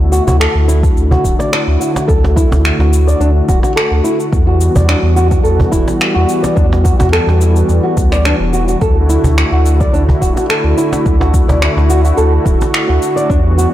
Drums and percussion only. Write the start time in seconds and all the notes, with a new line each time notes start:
0.13 cabasa
0.28 cajon bass, cabasa
0.41 finger snap, cabasa
0.69 cabasa
0.83 kick, cabasa
0.97 cabasa
1.11 cajon bass, cajon slap
1.25 kick, cabasa
1.40 cajon slap, cabasa
1.53 finger snap, cabasa
1.81 cabasa
1.96 cajon slap, cabasa
2.09 kick, cabasa
2.24 cajon slap
2.37 kick, cabasa
2.52 cajon bass, cajon slap, cabasa
2.65 finger snap, cabasa
2.80 cajon slap
2.93 cabasa
3.08 cabasa
3.21 cabasa
3.49 kick, cabasa
3.63 cajon slap, cabasa
3.77 finger snap, cabasa
4.05 cabasa
4.20 cabasa
4.33 kick, cabasa
4.61 cabasa
4.76 cajon bass, cabasa
4.89 finger snap, cabasa
5.17 cabasa
5.31 kick, cabasa
5.45 cabasa
5.60 cajon bass, cajon slap
5.73 kick, cabasa
5.88 cajon slap, cabasa
6.01 finger snap, cabasa
6.29 cabasa
6.44 cajon slap, cabasa
6.57 kick, cabasa
6.72 cajon slap
6.85 kick, cabasa
7.00 cajon bass, cajon slap, cabasa
7.13 finger snap, cabasa
7.29 cajon slap
7.41 cabasa
7.56 cabasa
7.69 cajon slap, cabasa
7.97 kick, cabasa
8.12 finger snap, cajon slap, cabasa
8.25 finger snap, cabasa
8.53 cabasa
8.68 cabasa
8.81 kick, cabasa
9.10 cabasa
9.24 cajon bass, cabasa
9.38 finger snap, cabasa
9.66 cabasa
9.81 kick, cabasa
9.94 cabasa
10.09 cajon bass, cajon slap
10.22 kick, cabasa
10.37 cajon slap, cabasa
10.50 finger snap, cabasa
10.78 cabasa
10.93 cajon slap, cabasa
11.06 kick, cabasa
11.21 cajon slap
11.34 kick, cabasa
11.49 cajon bass, cajon slap, cabasa
11.62 finger snap, cabasa
11.78 cajon slap
11.90 cabasa
12.05 cabasa
12.18 cabasa
12.46 kick, cabasa
12.61 cajon slap, cabasa
12.74 finger snap, cabasa
13.02 cabasa
13.17 cabasa
13.30 kick, cabasa
13.59 cabasa